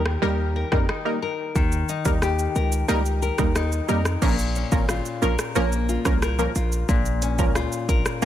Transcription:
0.00 0.17 D#2 medium
0.00 1.54 D#3 medium
0.00 0.88 D#4 medium
0.00 0.21 G4 medium
0.00 0.55 A#4 medium
0.06 cross-stick loud
0.22 0.64 D#2 medium
0.22 0.68 G3 loud
0.22 0.68 A#3 medium
0.22 0.68 D#4 medium
0.22 2.21 G4 medium
0.22 0.68 A#4 loud
0.56 1.22 A#4 medium
0.72 0.86 F2 medium
0.72 0.85 G3 medium
0.72 0.85 A#3 medium
0.72 0.86 D#4 medium
0.72 0.86 A#4 medium
0.72 kick loud
0.72 cross-stick medium
0.89 1.88 D#4 medium
0.89 cross-stick medium
1.05 1.19 G3 medium
1.05 1.19 A#3 medium
1.05 1.19 D#4 medium
1.05 1.19 A#4 medium
1.22 2.55 A#4 medium
1.55 1.83 D#2 medium
1.55 4.22 D#3 medium
1.55 kick loud
1.55 shaker medium
1.72 shaker medium
1.89 3.55 D#4 medium
1.89 shaker medium
2.05 2.47 D#2 medium
2.05 2.19 G3 medium
2.05 2.19 A#3 medium
2.05 2.19 D#4 medium
2.05 2.19 A#4 medium
2.05 kick loud
2.05 shaker medium
2.22 2.88 G4 medium
2.22 cross-stick medium
2.22 shaker medium
2.39 shaker soft
2.55 2.84 C#2 medium
2.55 3.22 A#4 medium
2.55 shaker soft
2.72 shaker medium
2.88 3.31 C#2 loud
2.88 3.02 G3 loud
2.88 3.02 A#3 medium
2.88 3.02 D#4 medium
2.88 4.29 G4 medium
2.88 3.02 A#4 loud
2.88 shaker medium
3.06 shaker soft
3.22 3.89 A#4 medium
3.22 shaker medium
3.38 3.81 D#2 medium
3.38 3.52 G3 medium
3.38 3.52 A#3 medium
3.38 3.52 D#4 medium
3.38 3.52 A#4 medium
3.38 kick medium
3.38 cross-stick medium
3.38 shaker medium
3.56 4.29 D#4 medium
3.56 cross-stick loud
3.56 shaker medium
3.72 shaker medium
3.88 4.17 F2 medium
3.88 4.02 G3 medium
3.88 4.02 A#3 medium
3.88 4.02 D#4 medium
3.88 5.22 A#4 medium
3.88 4.02 A#4 medium
3.88 shaker medium
4.05 cross-stick medium
4.05 shaker medium
4.22 4.64 A#1 loud
4.22 6.87 A#2 medium
4.22 4.35 F3 medium
4.22 4.35 A#3 medium
4.22 4.35 C#4 medium
4.22 4.36 A#4 loud
4.22 kick loud
4.22 crash medium
4.22 shaker medium
4.39 shaker medium
4.55 7.21 C#4 medium
4.55 shaker medium
4.72 5.00 G#1 medium
4.72 4.85 F3 medium
4.72 4.85 A#3 medium
4.72 4.85 C#4 medium
4.72 4.86 A#4 medium
4.72 kick loud
4.72 shaker medium
4.89 5.88 F4 medium
4.89 cross-stick medium
4.89 shaker medium
5.05 shaker soft
5.22 5.36 A#1 medium
5.22 5.35 F3 medium
5.22 5.35 A#3 medium
5.22 5.36 C#4 medium
5.22 6.22 A#4 medium
5.22 5.36 A#4 medium
5.22 shaker soft
5.39 cross-stick medium
5.39 shaker medium
5.55 5.97 A#1 loud
5.55 6.01 F3 loud
5.55 6.02 A#3 medium
5.55 8.22 A#3 medium
5.55 6.02 C#4 medium
5.55 6.02 A#4 loud
5.55 shaker medium
5.72 shaker soft
5.89 6.54 F4 medium
5.89 shaker soft
6.05 6.48 C2 medium
6.05 6.19 F3 medium
6.05 6.19 A#3 medium
6.05 6.19 C#4 medium
6.05 6.19 A#4 medium
6.05 kick medium
6.05 cross-stick medium
6.05 shaker medium
6.22 7.88 A#4 medium
6.22 cross-stick loud
6.22 shaker medium
6.39 6.52 F3 medium
6.39 6.52 A#3 medium
6.39 6.52 C#4 medium
6.39 6.52 A#4 medium
6.39 shaker medium
6.55 6.84 A#1 medium
6.55 7.54 F4 medium
6.55 shaker medium
6.72 shaker medium
6.89 7.40 A#1 loud
6.89 8.25 A#2 medium
6.89 kick loud
6.89 shaker medium
7.06 shaker medium
7.22 8.25 C#4 medium
7.22 closed hi-hat medium
7.22 shaker medium
7.39 7.67 C#2 medium
7.39 7.52 F3 medium
7.39 7.52 A#3 medium
7.39 7.52 C#4 medium
7.39 7.52 A#4 medium
7.39 kick loud
7.39 shaker medium
7.55 8.25 F4 medium
7.55 cross-stick medium
7.55 shaker medium
7.72 shaker medium
7.89 8.03 A#1 medium
7.89 8.25 A#4 medium
7.89 kick loud
7.89 closed hi-hat medium
7.89 shaker soft
8.06 cross-stick medium
8.06 shaker medium

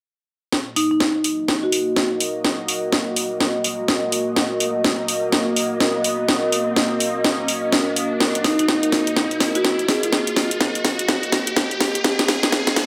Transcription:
0.52 12.86 A#3 medium
0.52 12.86 F#4 medium
0.52 12.86 D#5 medium
0.52 snare soft
0.52 riser medium
0.76 0.86 D#4 medium
0.76 open hi-hat loud
0.91 0.97 D#4 medium
1.00 snare medium
1.24 open hi-hat medium
1.48 snare soft
1.63 2.29 F#4 medium
1.72 open hi-hat loud
1.96 snare medium
2.20 open hi-hat medium
2.44 snare medium
2.68 open hi-hat loud
2.92 snare medium
3.16 open hi-hat medium
3.40 snare medium
3.64 open hi-hat loud
3.88 snare medium
4.12 open hi-hat loud
4.36 snare medium
4.60 open hi-hat loud
4.84 snare medium
5.08 open hi-hat loud
5.32 snare medium
5.56 open hi-hat loud
5.80 snare medium
6.04 open hi-hat loud
6.28 snare medium
6.52 open hi-hat loud
6.76 snare medium
7.00 open hi-hat medium
7.24 snare medium
7.48 open hi-hat loud
7.72 snare medium
7.96 open hi-hat loud
8.20 snare medium
8.35 closed hi-hat soft
8.44 8.54 D#4 medium
8.44 snare medium
8.44 open hi-hat loud
8.59 8.65 D#4 medium
8.59 closed hi-hat medium
8.68 snare medium
8.83 closed hi-hat medium
8.92 snare medium
8.92 open hi-hat medium
9.07 closed hi-hat medium
9.16 snare medium
9.31 closed hi-hat soft
9.40 snare medium
9.40 open hi-hat loud
9.55 9.61 F#4 medium
9.55 closed hi-hat medium
9.64 snare medium
9.79 closed hi-hat soft
9.88 10.37 G#4 medium
9.88 snare medium
9.88 open hi-hat medium
10.03 closed hi-hat medium
10.12 snare medium
10.27 closed hi-hat medium
10.36 snare medium
10.36 open hi-hat loud
10.51 closed hi-hat medium
10.61 snare medium
10.75 closed hi-hat medium
10.85 snare medium
10.85 open hi-hat medium
10.99 closed hi-hat medium
11.08 snare medium
11.23 closed hi-hat soft
11.32 snare medium
11.32 open hi-hat loud
11.47 closed hi-hat medium
11.56 snare medium
11.71 closed hi-hat soft
11.80 snare medium
11.80 open hi-hat medium
11.95 closed hi-hat medium
12.04 snare medium
12.19 snare medium
12.19 closed hi-hat medium
12.28 snare medium
12.28 open hi-hat loud
12.43 snare medium
12.43 closed hi-hat medium
12.52 snare loud
12.67 snare medium
12.67 closed hi-hat medium
12.76 snare medium
12.76 open hi-hat medium

